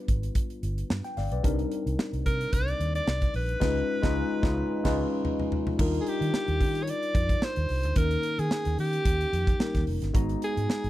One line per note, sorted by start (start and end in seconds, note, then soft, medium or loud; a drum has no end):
0.00 1.13 G3 medium
0.00 1.13 B3 medium
0.00 1.13 D4 medium
0.00 1.14 F4 medium
0.00 0.87 B4 medium
0.08 0.28 G#1 medium
0.08 kick medium
0.08 closed hi-hat medium
0.23 closed hi-hat medium
0.35 kick medium
0.35 closed hi-hat medium
0.50 closed hi-hat soft
0.63 0.82 G1 medium
0.63 closed hi-hat medium
0.78 closed hi-hat soft
0.90 1.00 G2 medium
0.90 snare loud
1.04 1.16 G5 medium
1.04 snare soft
1.04 closed hi-hat soft
1.17 1.28 G1 medium
1.17 1.31 D5 medium
1.17 1.31 F5 medium
1.17 snare soft
1.17 open hi-hat medium
1.32 1.40 B1 medium
1.32 1.58 B4 medium
1.32 1.58 D5 medium
1.32 closed hi-hat medium
1.43 1.63 C2 loud
1.43 3.57 G3 medium
1.43 3.57 C4 medium
1.43 3.58 D4 medium
1.43 3.58 D#4 medium
1.43 3.58 A#4 medium
1.43 kick medium
1.43 closed hi-hat medium
1.59 closed hi-hat soft
1.72 closed hi-hat medium
1.86 1.95 C2 medium
1.86 closed hi-hat medium
1.99 snare loud
2.13 2.22 C2 medium
2.13 closed hi-hat soft
2.26 2.45 C3 medium
2.26 2.55 A#4 loud
2.26 kick medium
2.26 closed hi-hat medium
2.41 closed hi-hat medium
2.53 2.72 C2 loud
2.53 2.95 D5 loud
2.53 kick medium
2.53 closed hi-hat medium
2.68 closed hi-hat soft
2.80 2.99 D#2 medium
2.80 closed hi-hat medium
2.95 3.32 D5 loud
2.95 closed hi-hat medium
3.07 3.26 C2 medium
3.07 snare loud
3.22 kick medium
3.22 snare soft
3.22 closed hi-hat soft
3.34 3.53 A#1 medium
3.34 4.94 B4 loud
3.34 open hi-hat medium
3.49 closed hi-hat medium
3.60 3.80 C#2 loud
3.60 3.80 G#3 loud
3.60 3.80 C#4 loud
3.60 3.80 D#4 loud
3.60 3.81 F4 loud
3.60 3.81 B4 loud
3.60 kick loud
3.60 snare loud
3.60 crash medium
4.02 4.22 C#2 medium
4.02 4.21 G#3 loud
4.02 4.21 C#4 loud
4.02 4.22 D#4 loud
4.02 4.22 F4 loud
4.02 4.22 B4 loud
4.02 kick loud
4.02 snare loud
4.42 4.62 C#2 loud
4.42 4.61 G#3 loud
4.42 4.62 C#4 medium
4.42 4.62 D#4 medium
4.42 4.62 F4 loud
4.42 4.63 B4 medium
4.42 kick loud
4.42 snare loud
4.84 5.03 C#2 medium
4.84 5.02 G#3 loud
4.84 5.03 C#4 loud
4.84 5.03 D#4 loud
4.84 5.04 F4 loud
4.84 5.04 B4 loud
4.84 kick medium
4.84 snare loud
4.84 crash medium
5.25 floor tom medium
5.39 floor tom medium
5.52 floor tom loud
5.67 floor tom medium
5.78 5.98 D#2 loud
5.78 7.92 G3 medium
5.78 7.93 D4 medium
5.78 7.93 D#4 medium
5.78 7.93 F4 medium
5.78 7.93 A#4 loud
5.78 kick loud
5.78 crash loud
5.94 closed hi-hat medium
6.01 6.10 G#4 medium
6.07 6.84 G4 loud
6.07 closed hi-hat medium
6.21 6.30 D#3 loud
6.21 closed hi-hat medium
6.34 snare loud
6.48 6.62 D#2 loud
6.48 closed hi-hat soft
6.61 6.90 D#3 loud
6.61 kick medium
6.61 open hi-hat medium
6.75 closed hi-hat medium
6.83 6.92 C#5 medium
6.87 7.46 D5 loud
6.87 closed hi-hat medium
7.03 closed hi-hat soft
7.15 7.34 F2 loud
7.15 kick loud
7.15 closed hi-hat medium
7.29 kick medium
7.29 closed hi-hat medium
7.42 7.99 C5 medium
7.42 snare loud
7.56 7.66 D#2 loud
7.56 closed hi-hat soft
7.69 7.85 C2 loud
7.69 open hi-hat medium
7.83 7.93 D2 medium
7.83 closed hi-hat medium
7.95 8.16 D#2 loud
7.95 9.56 D#3 medium
7.95 9.56 A#3 medium
7.95 9.57 C#4 medium
7.95 9.57 D#4 medium
7.95 9.57 A#4 medium
7.95 8.41 A#4 loud
7.95 kick loud
7.95 closed hi-hat loud
8.11 closed hi-hat medium
8.23 closed hi-hat medium
8.39 8.47 D#3 medium
8.39 8.79 G#4 loud
8.39 closed hi-hat medium
8.51 snare loud
8.65 8.75 D#2 loud
8.65 snare soft
8.65 closed hi-hat soft
8.78 8.98 D#3 loud
8.78 9.84 G4 loud
8.78 open hi-hat medium
8.93 closed hi-hat medium
9.05 9.25 D#2 loud
9.05 kick loud
9.05 closed hi-hat medium
9.21 closed hi-hat soft
9.33 9.52 F2 loud
9.33 closed hi-hat medium
9.47 kick medium
9.47 closed hi-hat medium
9.59 10.14 G3 medium
9.59 10.14 A#3 medium
9.59 10.15 C#4 soft
9.59 10.13 D#4 medium
9.59 10.15 A#4 medium
9.59 snare loud
9.75 9.83 D#2 medium
9.75 kick medium
9.75 snare soft
9.75 closed hi-hat soft
9.87 9.98 F1 loud
9.87 open hi-hat medium
10.02 10.11 G1 medium
10.02 snare soft
10.02 closed hi-hat medium
10.14 10.34 G#1 loud
10.14 10.90 G#3 medium
10.14 10.90 B3 medium
10.14 10.90 D#4 medium
10.14 10.90 F#4 medium
10.14 10.90 A#5 loud
10.14 kick loud
10.14 closed hi-hat loud
10.29 closed hi-hat medium
10.42 10.90 G#4 medium
10.42 closed hi-hat medium
10.57 10.66 G#2 loud
10.57 closed hi-hat medium
10.70 snare loud
10.84 10.90 G#1 medium
10.84 closed hi-hat soft